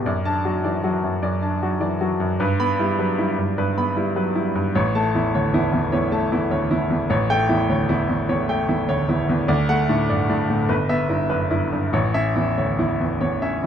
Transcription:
0.06 F#2 D5
0.25 D4 A5
0.45 F#3 F#4
0.64 E3 D5
0.84 F#3 F#4
1.04 F#2
1.22 F#2 D5
1.42 D4 A5
1.63 F#3 F#4
1.80 E3 D5
2.01 F#3 F#4
2.20 F#2
2.40 G2 B4
2.60 B3 B5
2.79 G3 E4
2.99 F#3 B4
3.19 G3 E4
3.38 G2
3.58 G2 B4
3.78 B3 B5
3.96 G3 E4
4.16 F#3 B4
4.35 G3 E4
4.55 G2
4.75 A1 C#5
4.95 A3 A5
5.15 E2 E4
5.35 D2 C#5
5.54 E2 E4
5.73 E2
5.92 E2 C#5
6.12 A3 A5
6.32 E2 E4
6.51 D2 C#5
6.71 E2 E4
6.90 E2
7.10 A1 C#5
7.30 A3 G5
7.49 E2 E4
7.70 D2 C#5
7.89 E2 E4
8.09 E2
8.29 E2 C#5
8.49 A3 G5
8.69 E2 E4
8.89 D2 C#5
9.09 E2 E4
9.29 E2
9.48 D2 D5
9.69 A3 F#5
9.89 A2 D4
10.10 G2 D5
10.30 A2 D4
10.50 A2
10.69 G1 B4
10.89 B3 E5
11.09 G2 E4
11.29 F#2 B4
11.51 G2 E4
11.72 G2
11.93 A1 C#5
12.14 C#4 E5
12.36 E2 E4
12.58 D2 C#5
12.79 E2 E4
13.01 E2
13.21 E2 C#5
13.42 C#4 E5

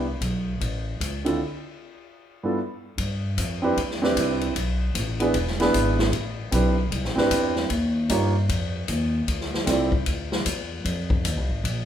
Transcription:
Already playing: C2
0.21 B1, kick, hi-hat pedal, ride
0.60 A1, kick, ride
1.00 C#2, kick, hi-hat pedal, ride
1.24 D3 C4 E4 F4 A4, ride
2.43 G2 B3 E4 F4 A4
2.98 G2, kick, ride
3.37 F2, kick, hi-hat pedal, ride
3.62 C4 D4 E4 G4 B4
3.77 E2, kick, ride
3.91 snare
4.02 C4 D4 E4 G4 B4, snare
4.16 C2, kick, hi-hat pedal, ride
4.41 ride
4.55 B1, kick, ride
4.95 A1, kick, hi-hat pedal, ride
5.20 B3 D4 E4 G#4 B4, ride
5.34 E1, kick, ride
5.47 snare
5.60 B3 D4 E4 G#4 B4, snare, ride
5.74 G#1, kick, hi-hat pedal, ride
5.99 snare
6.13 A1, kick, ride
6.51 B1 C4 D4 E4 G4 B4, kick, hi-hat pedal, ride
6.92 C2, kick, ride
7.04 A1, snare
7.16 G1 C4 D4 E4 G4 B4, snare
7.31 E2, kick, hi-hat pedal, ride
7.56 snare
7.70 D#2, kick, ride
8.09 G2 A#3 D#4 F4 G4 C#5, kick, hi-hat pedal, ride
8.49 F2, kick, ride
8.88 D#2, kick, hi-hat pedal, ride
9.28 D2, kick, ride
9.41 snare
9.54 snare
9.66 C2 C4 E4 F4 A4 D5, kick, snare, hi-hat pedal, ride
9.92 kick
10.06 D2, kick, ride
10.32 snare
10.46 E2, kick, hi-hat pedal, ride
10.85 F2, kick, ride
11.10 kick
11.24 D#2, kick, hi-hat pedal, ride
11.37 C2
11.49 G#1
11.64 A#1, kick, ride

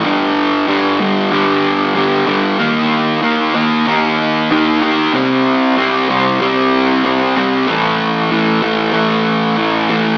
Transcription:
0.05 G2 D3 G3
0.68 G2 D3 G3
1.00 G2 D3 G3
1.31 G2 D3 G3
1.96 G2 D3 G3
2.27 G2 D3 G3
2.59 D#3 A#3 D#4
3.22 D#3 A#3 D#4
3.55 D#3 A#3 D#4
3.87 D#3 A#3 D#4
4.51 D#3 A#3 D#4
4.82 D#3 A#3 D#4
5.14 C3 G3 C4
5.77 C3 G3 C4
6.09 C3 G3 C4
6.40 C3 G3 C4
7.04 C3 G3 C4
7.36 C3 G3 C4
7.67 A2 E3 A3
8.31 A2 E3 A3
8.62 A2 E3 A3
8.93 A2 E3 A3
9.57 A2 E3 A3
9.89 A2 E3 A3

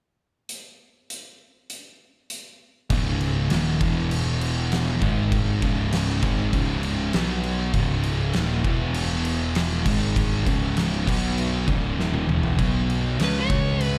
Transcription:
0.49 closed hi-hat
1.10 closed hi-hat
1.70 closed hi-hat
2.30 closed hi-hat
2.90 C#1 C#2 G#2 C#3, kick, crash
3.21 crash
3.50 D#1 D#2 A#2 D#3, snare, crash
3.81 E1 E2 B2 E3, kick, crash
4.11 crash
4.41 crash
4.72 snare, crash
5.02 G#1 G#2 D#3 G#3, kick, crash
5.32 kick, crash
5.62 C#1 C#2 G#2 C#3, kick, crash
5.93 snare, crash
6.22 G#1 G#2 D#3 G#3, kick, crash
6.53 C#1 C#2 G#2 C#3, kick, crash
6.83 crash
7.13 B1 B2 F#3 B3, snare, crash
7.44 crash
7.74 C#1 C#2 G#2 C#3, kick, crash
8.03 crash
8.33 D#1 D#2 A#2 D#3, snare, crash
8.64 E1 E2 B2 E3, kick, crash
8.94 crash
9.25 crash
9.55 snare, crash
9.86 G#1 G#2 D#3 G#3, kick, crash
10.16 kick, crash
10.46 C#1 C#2 G#2 C#3, kick, crash
10.77 snare, crash
11.07 B1 B2 F#3 B3, kick, crash
11.38 crash
11.67 C#1 C#2 G#2 C#3, kick, crash
11.97 D#1 D#2 A#2 D#3, snare
12.14 high tom
12.27 E1 E2 B2 E3, mid tom
12.43 floor tom
12.58 B1 B2 F#3 B3, kick, crash
12.90 crash
13.18 C#2 C#3 G#3 C#4, snare, crash
13.24 B4
13.40 C#5
13.49 C#2 C#3 G#3 C#4, kick, crash
13.81 B4, crash

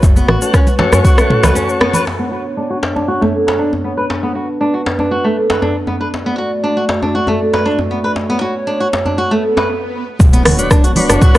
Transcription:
Already playing: A3 F#4
0.03 F#1 B4, kick, djembe slap, high conga, cabasa
0.16 B3, muted conga, cabasa
0.28 A1 F#4, cross-stick, low conga
0.42 C#4 F#4 A4 F#5, muted conga, cabasa
0.54 C#4, kick, cross-stick, cabasa
0.67 F#4, muted conga, high conga, cabasa
0.79 C#4 F#4 A4 C#5, djembe slap, high conga, low conga
0.92 F#2 C#4, cross-stick, muted conga, djembe tone, cabasa
1.05 F#4, kick, cabasa
1.18 A3, cross-stick, cabasa
1.30 mid tom, muted conga, high conga
1.43 C#2 B4, cross-stick, djembe slap, djembe tone, low conga, cabasa
1.55 C#4, muted conga, djembe tone, cabasa
1.69 cabasa
1.81 B3, cross-stick, muted conga, djembe tone
1.93 B4, low conga, cabasa
2.06 B3 D4 C#5, djembe slap
2.19 B3
2.31 F#4
2.57 D4
2.70 F#4
2.83 djembe slap
2.96 D4, djembe tone
3.08 F#4
3.21 A3, djembe tone
3.47 B4, djembe slap
3.59 D4
3.73 djembe tone
3.84 B3
3.97 B4
4.10 B4, djembe slap
4.23 B3
4.35 F#4
4.61 D4
4.74 F#4
4.86 djembe slap
4.99 D4, djembe tone
5.11 F#4
5.24 A3
5.50 B4, djembe slap, djembe tone
5.62 D4, djembe tone
5.87 B3, djembe tone
6.01 B4
6.13 A3 F#4 D5, djembe slap
6.26 B3
6.38 F#4
6.64 D4
6.77 F#4
6.89 djembe slap
7.03 D4, djembe tone
7.15 F#4
7.27 A3, djembe tone
7.53 B4, djembe slap
7.66 D4
7.79 djembe tone
7.91 B3
8.04 B4
8.16 C#5, djembe slap
8.30 B3
8.41 F#4
8.67 D4
8.80 F#4
8.93 djembe slap
9.06 D4, djembe tone
9.18 F#4, swell
9.31 A3
9.57 B4, djembe slap, djembe tone
10.19 B1 B3 D4 C#5, kick, impact, high conga, cabasa
10.33 B3, closed hi-hat, muted conga, cabasa
10.45 D2 F#4, cross-stick, open hi-hat, low conga
10.58 D4 F#4 B4 C#5, closed hi-hat, muted conga, high conga, cabasa
10.71 D4, kick, cross-stick, cabasa
10.84 F#4, closed hi-hat, muted conga, cabasa
10.96 D4 F#4 B4 C#5, open hi-hat, high conga, low conga
11.10 F#1 D4, cross-stick, closed hi-hat, muted conga, cabasa
11.21 F#4, kick, mid tom, high conga, cabasa
11.35 B1 A3, cross-stick, cabasa

